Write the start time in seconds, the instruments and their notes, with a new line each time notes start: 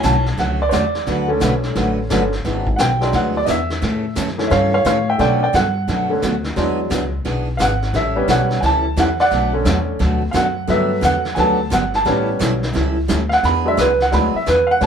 Already playing: upright piano E3 F#3 C#4
0.00 upright bass B1, steel-string acoustic guitar D3 F#3 A3 C#4 F#4, upright piano G#5, snare, hi-hat pedal
0.05 upright piano A5
0.26 snare
0.37 upright bass C#2, steel-string acoustic guitar D3 F#3 A3 C#4 F#4, upright piano F#5, brush sweep, snare
0.62 upright piano D5
0.69 upright bass E2, steel-string acoustic guitar D3 F#3 A3 C#4 F#4, upright piano C#5, snare, hi-hat pedal
0.74 upright piano D5
0.95 snare
1.07 upright bass D2, steel-string acoustic guitar D3 F#3 A3 D4 F#4 B4, brush sweep, snare
1.28 upright piano D3 A3 C#4
1.40 upright bass B1, steel-string acoustic guitar D3 F#3 A3 D4 F#4 B4, snare, hi-hat pedal
1.63 snare
1.75 upright bass A1, steel-string acoustic guitar D3 F#3 A3 D4 F#4 B4, brush sweep, snare
2.10 upright bass G1, upright piano D3 A3 C#4, steel-string acoustic guitar D3 F#3 A3 D4 F#4 B4, snare, hi-hat pedal
2.33 snare
2.44 upright bass G#1, steel-string acoustic guitar E3 B3 D4 G#4, brush sweep, snare
2.67 kick
2.76 upright bass B1, steel-string acoustic guitar E3 B3 D4 G#4, upright piano F#5, snare, hi-hat pedal
2.81 upright piano G5
3.01 upright piano F#3 G#3 D4, snare
3.12 upright bass D2, steel-string acoustic guitar E3 B3 D4 G#4, upright piano F#5, brush sweep, snare
3.37 upright piano D5
3.45 upright bass E2, steel-string acoustic guitar E3 B3 D4 G#4, upright piano D#5, snare, hi-hat pedal
3.50 upright piano E5
3.70 snare
3.82 upright bass A2, steel-string acoustic guitar C#3 E3 A3 C#4 A4, brush sweep, snare
4.15 upright bass F#2, steel-string acoustic guitar C#3 E3 A3 C#4 A4, snare, hi-hat pedal
4.28 snare
4.38 upright piano E3 A3 C#4, snare
4.47 upright bass G2, steel-string acoustic guitar C#3 E3 A3 C#4, upright piano C#5 E5, brush sweep, snare
4.52 steel-string acoustic guitar A4, upright piano F5
4.74 upright piano C#5 F5
4.85 upright bass A2, steel-string acoustic guitar C#3 E3 A3 C#4 A4, upright piano C#5 F5, snare, hi-hat pedal
5.09 upright piano E5 G5
5.18 steel-string acoustic guitar B2 F#3 A3 D4 F#4, upright bass B2, upright piano D3 A3 C#4 D5 G5, brush sweep, snare
5.43 upright piano D5 G5
5.53 upright bass G2, steel-string acoustic guitar B2 F#3 A3 D4 F#4, upright piano F#5, snare, hi-hat pedal
5.88 upright bass F#2, steel-string acoustic guitar B2 F#3 A3 D4 F#4, brush sweep, snare
6.10 upright piano D3 A3 C#4
6.22 upright bass D2, steel-string acoustic guitar B2 F#3 A3 D4 F#4, snare, hi-hat pedal
6.44 snare
6.56 upright bass E2, steel-string acoustic guitar E3 B3 D4 G#4, upright piano F#3 G#3 D4, brush sweep, snare
6.90 upright bass C#2, steel-string acoustic guitar E3 B3 D4 G#4, snare, hi-hat pedal
7.25 upright bass B1, steel-string acoustic guitar E3 B3 D4 G#4, brush sweep, snare
7.57 upright bass G#1, steel-string acoustic guitar E3 B3 D4 G#4, upright piano F5, snare, hi-hat pedal
7.62 upright piano F#5
7.82 snare
7.93 upright bass A1, steel-string acoustic guitar E3 G3 C#4 E4 A4, upright piano E5, brush sweep, snare
8.16 upright piano G3 B3 C#4
8.28 upright bass B1, steel-string acoustic guitar E3 G3 C#4 E4 A4, upright piano F#5, snare, hi-hat pedal
8.50 snare
8.61 upright bass C#2, steel-string acoustic guitar E3 G3 C#4 E4 A4, upright piano G#5, brush sweep, snare
8.65 upright piano A5
8.96 upright bass E2, steel-string acoustic guitar E3 G3 C#4 E4 A4, upright piano F#5, snare, hi-hat pedal
9.19 upright piano D5 F#5, snare
9.31 upright bass B1, steel-string acoustic guitar B2 F#3 A3 D4 F#4, brush sweep, snare
9.53 upright piano D3 A3 C#4
9.65 upright bass E2, steel-string acoustic guitar B2 F#3 A3 D4 F#4, snare, hi-hat pedal
9.99 upright bass D2, steel-string acoustic guitar B2 F#3 A3 D4 F#4, brush sweep, snare
10.31 upright bass F#2, steel-string acoustic guitar B2 F#3 A3 D4 F#4, upright piano F5, snare, hi-hat pedal
10.36 upright piano F#5
10.67 upright bass G2, steel-string acoustic guitar D3 F#3 B3 D4 G4, upright piano F#3 A3 B3 E5, brush sweep, snare
11.01 upright bass E2, steel-string acoustic guitar D3 F#3 B3 D4 G4, upright piano F#5, snare, hi-hat pedal
11.25 snare
11.35 upright bass D2, steel-string acoustic guitar D3 F#3 B3 D4 G4, upright piano F#3 A3 B3 G#5, brush sweep, snare
11.39 upright piano A5
11.70 upright bass G1, steel-string acoustic guitar D3 F#3 B3 D4 G4, upright piano F#5, snare, hi-hat pedal
11.94 upright piano A5, snare
12.05 upright bass A1, steel-string acoustic guitar E3 G3 C#4 E4 A4, upright piano G3 B3 C#4, brush sweep, snare
12.39 upright bass B1, steel-string acoustic guitar E3 G3 C#4 E4 A4, snare, hi-hat pedal
12.63 snare
12.73 upright bass C#2, steel-string acoustic guitar E3 G3 C#4 E4 A4, brush sweep, snare
13.08 upright bass D2, steel-string acoustic guitar E3 G3 C#4 E4 A4, snare, hi-hat pedal
13.29 upright piano F5, snare
13.33 upright piano F#5
13.43 upright bass E2, steel-string acoustic guitar E3 B3 D4 G#4, upright piano B5, brush sweep, snare
13.65 upright piano F#3 G#3 D4 E5
13.77 upright bass C#2, steel-string acoustic guitar E3 B3 D4 G#4, upright piano B4, snare, hi-hat pedal
14.00 upright piano F#5, snare
14.11 upright bass D2, steel-string acoustic guitar E3 B3 D4 G#4, upright piano F#3 G#3 D4 B5, brush sweep, snare
14.34 upright piano E5, muted upright bass stroke
14.46 upright bass E2, steel-string acoustic guitar E3 B3 D4 G#4, upright piano B4, snare, hi-hat pedal
14.67 upright piano F5
14.71 upright piano F#5
14.81 upright bass A2, steel-string acoustic guitar E3 G3 C#4 E4 A4, upright piano G3 B3 C#4 A5, brush sweep, snare